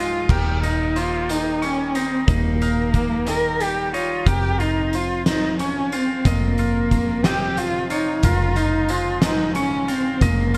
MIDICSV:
0, 0, Header, 1, 6, 480
1, 0, Start_track
1, 0, Tempo, 662252
1, 212, Time_signature, 6, 3, 24, 8
1, 7665, End_track
2, 0, Start_track
2, 0, Title_t, "Clean electric guitar"
2, 0, Program_c, 0, 27
2, 0, Note_on_c, 0, 75, 62
2, 214, Note_off_c, 0, 75, 0
2, 218, Note_on_c, 0, 70, 65
2, 694, Note_off_c, 0, 70, 0
2, 697, Note_on_c, 0, 72, 60
2, 1174, Note_on_c, 0, 85, 53
2, 1176, Note_off_c, 0, 72, 0
2, 1655, Note_off_c, 0, 85, 0
2, 1658, Note_on_c, 0, 75, 61
2, 1896, Note_off_c, 0, 75, 0
2, 1900, Note_on_c, 0, 77, 53
2, 2372, Note_off_c, 0, 77, 0
2, 2375, Note_on_c, 0, 75, 62
2, 2855, Note_on_c, 0, 73, 60
2, 2856, Note_off_c, 0, 75, 0
2, 3096, Note_off_c, 0, 73, 0
2, 3100, Note_on_c, 0, 70, 65
2, 3578, Note_off_c, 0, 70, 0
2, 3587, Note_on_c, 0, 72, 56
2, 4061, Note_off_c, 0, 72, 0
2, 4062, Note_on_c, 0, 85, 59
2, 4538, Note_off_c, 0, 85, 0
2, 4541, Note_on_c, 0, 75, 70
2, 4778, Note_off_c, 0, 75, 0
2, 4782, Note_on_c, 0, 77, 58
2, 5255, Note_off_c, 0, 77, 0
2, 5258, Note_on_c, 0, 75, 62
2, 5734, Note_off_c, 0, 75, 0
2, 5737, Note_on_c, 0, 73, 55
2, 5975, Note_off_c, 0, 73, 0
2, 5976, Note_on_c, 0, 70, 65
2, 6445, Note_off_c, 0, 70, 0
2, 6448, Note_on_c, 0, 72, 53
2, 6928, Note_on_c, 0, 85, 56
2, 6929, Note_off_c, 0, 72, 0
2, 7408, Note_on_c, 0, 75, 75
2, 7430, Note_off_c, 0, 85, 0
2, 7641, Note_off_c, 0, 75, 0
2, 7665, End_track
3, 0, Start_track
3, 0, Title_t, "Cello"
3, 0, Program_c, 1, 42
3, 0, Note_on_c, 1, 65, 73
3, 227, Note_on_c, 1, 67, 66
3, 238, Note_off_c, 1, 65, 0
3, 448, Note_off_c, 1, 67, 0
3, 453, Note_on_c, 1, 63, 64
3, 704, Note_on_c, 1, 65, 74
3, 715, Note_off_c, 1, 63, 0
3, 946, Note_on_c, 1, 63, 71
3, 957, Note_off_c, 1, 65, 0
3, 1186, Note_on_c, 1, 61, 76
3, 1197, Note_off_c, 1, 63, 0
3, 1417, Note_on_c, 1, 60, 65
3, 1428, Note_off_c, 1, 61, 0
3, 1656, Note_off_c, 1, 60, 0
3, 1660, Note_on_c, 1, 58, 75
3, 2386, Note_on_c, 1, 70, 79
3, 2396, Note_off_c, 1, 58, 0
3, 2623, Note_on_c, 1, 67, 80
3, 2634, Note_off_c, 1, 70, 0
3, 2859, Note_off_c, 1, 67, 0
3, 2867, Note_on_c, 1, 65, 70
3, 3101, Note_on_c, 1, 67, 82
3, 3112, Note_off_c, 1, 65, 0
3, 3341, Note_on_c, 1, 63, 74
3, 3352, Note_off_c, 1, 67, 0
3, 3589, Note_on_c, 1, 65, 72
3, 3600, Note_off_c, 1, 63, 0
3, 3817, Note_off_c, 1, 65, 0
3, 3822, Note_on_c, 1, 63, 72
3, 4042, Note_off_c, 1, 63, 0
3, 4053, Note_on_c, 1, 61, 79
3, 4307, Note_on_c, 1, 60, 68
3, 4318, Note_off_c, 1, 61, 0
3, 4545, Note_on_c, 1, 58, 76
3, 4556, Note_off_c, 1, 60, 0
3, 5262, Note_on_c, 1, 67, 68
3, 5273, Note_off_c, 1, 58, 0
3, 5492, Note_on_c, 1, 65, 76
3, 5503, Note_off_c, 1, 67, 0
3, 5728, Note_off_c, 1, 65, 0
3, 5733, Note_on_c, 1, 63, 62
3, 5973, Note_on_c, 1, 65, 68
3, 5983, Note_off_c, 1, 63, 0
3, 6205, Note_on_c, 1, 63, 71
3, 6216, Note_off_c, 1, 65, 0
3, 6450, Note_on_c, 1, 65, 73
3, 6461, Note_off_c, 1, 63, 0
3, 6690, Note_off_c, 1, 65, 0
3, 6697, Note_on_c, 1, 63, 76
3, 6917, Note_off_c, 1, 63, 0
3, 6929, Note_on_c, 1, 61, 77
3, 7163, Note_on_c, 1, 60, 64
3, 7174, Note_off_c, 1, 61, 0
3, 7411, Note_on_c, 1, 58, 73
3, 7422, Note_off_c, 1, 60, 0
3, 7665, Note_off_c, 1, 58, 0
3, 7665, End_track
4, 0, Start_track
4, 0, Title_t, "Clean electric guitar"
4, 0, Program_c, 2, 27
4, 0, Note_on_c, 2, 44, 55
4, 0, Note_on_c, 2, 56, 58
4, 212, Note_off_c, 2, 56, 0
4, 212, Note_on_c, 2, 39, 51
4, 213, Note_off_c, 2, 44, 0
4, 461, Note_on_c, 2, 63, 53
4, 700, Note_on_c, 2, 58, 46
4, 939, Note_on_c, 2, 51, 54
4, 1181, Note_on_c, 2, 55, 46
4, 1409, Note_off_c, 2, 63, 0
4, 1414, Note_off_c, 2, 39, 0
4, 1417, Note_on_c, 2, 63, 57
4, 1660, Note_on_c, 2, 39, 58
4, 1890, Note_off_c, 2, 63, 0
4, 1898, Note_off_c, 2, 58, 0
4, 1899, Note_on_c, 2, 63, 55
4, 2137, Note_on_c, 2, 58, 51
4, 2138, Note_off_c, 2, 51, 0
4, 2385, Note_on_c, 2, 51, 53
4, 2618, Note_off_c, 2, 55, 0
4, 2621, Note_on_c, 2, 55, 51
4, 2846, Note_off_c, 2, 63, 0
4, 2854, Note_on_c, 2, 63, 54
4, 2858, Note_off_c, 2, 39, 0
4, 3095, Note_off_c, 2, 63, 0
4, 3097, Note_off_c, 2, 58, 0
4, 3099, Note_on_c, 2, 41, 60
4, 3101, Note_off_c, 2, 51, 0
4, 3120, Note_off_c, 2, 55, 0
4, 3338, Note_on_c, 2, 65, 52
4, 4061, Note_on_c, 2, 53, 45
4, 4294, Note_off_c, 2, 65, 0
4, 4297, Note_on_c, 2, 65, 57
4, 4533, Note_off_c, 2, 41, 0
4, 4536, Note_on_c, 2, 41, 53
4, 4773, Note_off_c, 2, 65, 0
4, 4776, Note_on_c, 2, 65, 51
4, 5249, Note_on_c, 2, 48, 58
4, 5488, Note_off_c, 2, 53, 0
4, 5491, Note_on_c, 2, 53, 43
4, 5726, Note_off_c, 2, 65, 0
4, 5729, Note_on_c, 2, 65, 57
4, 5969, Note_off_c, 2, 41, 0
4, 5970, Note_off_c, 2, 48, 0
4, 5972, Note_on_c, 2, 37, 55
4, 6209, Note_off_c, 2, 65, 0
4, 6212, Note_on_c, 2, 65, 58
4, 6450, Note_on_c, 2, 56, 52
4, 6686, Note_on_c, 2, 44, 57
4, 6923, Note_off_c, 2, 53, 0
4, 6926, Note_on_c, 2, 49, 49
4, 7159, Note_off_c, 2, 65, 0
4, 7162, Note_on_c, 2, 65, 59
4, 7169, Note_off_c, 2, 37, 0
4, 7405, Note_on_c, 2, 37, 57
4, 7639, Note_off_c, 2, 65, 0
4, 7642, Note_on_c, 2, 65, 56
4, 7647, Note_off_c, 2, 56, 0
4, 7665, Note_off_c, 2, 37, 0
4, 7665, Note_off_c, 2, 44, 0
4, 7665, Note_off_c, 2, 49, 0
4, 7665, Note_off_c, 2, 65, 0
4, 7665, End_track
5, 0, Start_track
5, 0, Title_t, "Fingered electric bass"
5, 0, Program_c, 3, 33
5, 0, Note_on_c, 3, 25, 64
5, 182, Note_off_c, 3, 25, 0
5, 211, Note_on_c, 3, 27, 53
5, 1625, Note_off_c, 3, 27, 0
5, 1651, Note_on_c, 3, 27, 53
5, 3065, Note_off_c, 3, 27, 0
5, 3089, Note_on_c, 3, 29, 58
5, 4503, Note_off_c, 3, 29, 0
5, 4534, Note_on_c, 3, 29, 65
5, 5944, Note_off_c, 3, 29, 0
5, 5970, Note_on_c, 3, 29, 66
5, 7379, Note_off_c, 3, 29, 0
5, 7405, Note_on_c, 3, 29, 57
5, 7665, Note_off_c, 3, 29, 0
5, 7665, End_track
6, 0, Start_track
6, 0, Title_t, "Drums"
6, 212, Note_on_c, 9, 36, 88
6, 216, Note_on_c, 9, 49, 67
6, 285, Note_off_c, 9, 36, 0
6, 289, Note_off_c, 9, 49, 0
6, 459, Note_on_c, 9, 42, 43
6, 531, Note_off_c, 9, 42, 0
6, 696, Note_on_c, 9, 42, 46
6, 769, Note_off_c, 9, 42, 0
6, 937, Note_on_c, 9, 42, 58
6, 1009, Note_off_c, 9, 42, 0
6, 1176, Note_on_c, 9, 42, 43
6, 1249, Note_off_c, 9, 42, 0
6, 1413, Note_on_c, 9, 42, 44
6, 1485, Note_off_c, 9, 42, 0
6, 1651, Note_on_c, 9, 42, 63
6, 1652, Note_on_c, 9, 36, 95
6, 1723, Note_off_c, 9, 42, 0
6, 1725, Note_off_c, 9, 36, 0
6, 1895, Note_on_c, 9, 42, 46
6, 1968, Note_off_c, 9, 42, 0
6, 2129, Note_on_c, 9, 42, 46
6, 2131, Note_on_c, 9, 36, 63
6, 2201, Note_off_c, 9, 42, 0
6, 2203, Note_off_c, 9, 36, 0
6, 2367, Note_on_c, 9, 42, 64
6, 2439, Note_off_c, 9, 42, 0
6, 2612, Note_on_c, 9, 42, 48
6, 2684, Note_off_c, 9, 42, 0
6, 2857, Note_on_c, 9, 42, 49
6, 2929, Note_off_c, 9, 42, 0
6, 3091, Note_on_c, 9, 36, 86
6, 3091, Note_on_c, 9, 42, 65
6, 3163, Note_off_c, 9, 42, 0
6, 3164, Note_off_c, 9, 36, 0
6, 3333, Note_on_c, 9, 42, 42
6, 3405, Note_off_c, 9, 42, 0
6, 3572, Note_on_c, 9, 42, 51
6, 3645, Note_off_c, 9, 42, 0
6, 3813, Note_on_c, 9, 38, 70
6, 3813, Note_on_c, 9, 42, 60
6, 3885, Note_off_c, 9, 38, 0
6, 3885, Note_off_c, 9, 42, 0
6, 4054, Note_on_c, 9, 42, 47
6, 4126, Note_off_c, 9, 42, 0
6, 4293, Note_on_c, 9, 42, 52
6, 4365, Note_off_c, 9, 42, 0
6, 4531, Note_on_c, 9, 42, 65
6, 4532, Note_on_c, 9, 36, 90
6, 4604, Note_off_c, 9, 36, 0
6, 4604, Note_off_c, 9, 42, 0
6, 4767, Note_on_c, 9, 42, 43
6, 4840, Note_off_c, 9, 42, 0
6, 5011, Note_on_c, 9, 36, 62
6, 5013, Note_on_c, 9, 42, 48
6, 5083, Note_off_c, 9, 36, 0
6, 5085, Note_off_c, 9, 42, 0
6, 5248, Note_on_c, 9, 38, 76
6, 5248, Note_on_c, 9, 42, 58
6, 5321, Note_off_c, 9, 38, 0
6, 5321, Note_off_c, 9, 42, 0
6, 5488, Note_on_c, 9, 42, 47
6, 5560, Note_off_c, 9, 42, 0
6, 5727, Note_on_c, 9, 42, 47
6, 5799, Note_off_c, 9, 42, 0
6, 5964, Note_on_c, 9, 42, 68
6, 5969, Note_on_c, 9, 36, 81
6, 6036, Note_off_c, 9, 42, 0
6, 6041, Note_off_c, 9, 36, 0
6, 6204, Note_on_c, 9, 42, 46
6, 6276, Note_off_c, 9, 42, 0
6, 6440, Note_on_c, 9, 42, 51
6, 6513, Note_off_c, 9, 42, 0
6, 6680, Note_on_c, 9, 38, 77
6, 6680, Note_on_c, 9, 42, 66
6, 6753, Note_off_c, 9, 38, 0
6, 6753, Note_off_c, 9, 42, 0
6, 6921, Note_on_c, 9, 42, 53
6, 6993, Note_off_c, 9, 42, 0
6, 7163, Note_on_c, 9, 42, 48
6, 7236, Note_off_c, 9, 42, 0
6, 7403, Note_on_c, 9, 36, 90
6, 7403, Note_on_c, 9, 42, 65
6, 7475, Note_off_c, 9, 36, 0
6, 7476, Note_off_c, 9, 42, 0
6, 7642, Note_on_c, 9, 42, 51
6, 7665, Note_off_c, 9, 42, 0
6, 7665, End_track
0, 0, End_of_file